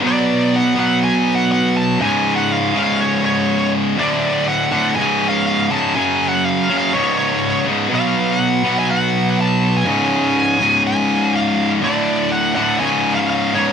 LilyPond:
<<
  \new Staff \with { instrumentName = "Lead electric guitar" } { \time 4/4 \tempo 4 = 122 d''4 fis''8 fis''8 \tuplet 3/2 { gis''4 fis''8 } fis''8 a''8 | \tuplet 3/2 { gis''4 fis''8 eis''4 eis''8 } cis''8 cis''4 r8 | d''4 fis''8 fis''8 \tuplet 3/2 { gis''4 eis''8 } eis''8 a''8 | \tuplet 3/2 { gis''4 fis''8 eis''4 eis''8 } cis''8 cis''4 r8 |
eis''8. fis''4 gis''16 fis''4 a''8. gis''16~ | gis''2 gis''4 eis''8. r16 | d''4 fis''8 fis''8 \tuplet 3/2 { gis''4 eis''8 } eis''8 cis''8 | }
  \new Staff \with { instrumentName = "Distorted electric guitar" } { \clef bass \time 4/4 <b, fis b>4. <b, fis b>2~ <b, fis b>8 | <cis, gis, cis>4. <cis, gis, cis>2~ <cis, gis, cis>8 | <d, a, d>4. <d, a, d>8 <cis, gis, cis>4. <cis, gis, cis>8 | <fis, cis fis>4. <fis, cis fis>8 <cis, gis, cis>4. <cis, gis, cis>8 |
<b, fis b>4. <b, fis b>2~ <b, fis b>8 | <cis, gis, cis>4. <cis, gis, cis>2~ <cis, gis, cis>8 | <d, a, d>4. <d, a, d>8 <cis, gis, cis>4. <cis, gis, cis>8 | }
>>